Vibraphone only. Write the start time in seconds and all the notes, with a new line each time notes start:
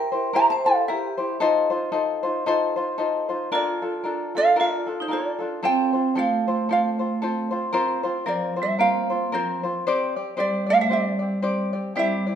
Already playing: A#4
0.37 E5
0.52 C5
0.67 A4
0.90 G4
3.52 F4
4.37 A4
4.60 F4
5.00 D#4
5.11 F4
5.64 C4
6.18 A3
6.71 A3
8.26 F3
8.62 G3
8.80 A#3
9.34 F3
10.39 G3
10.70 A3
10.82 G3
10.92 G3
11.97 G3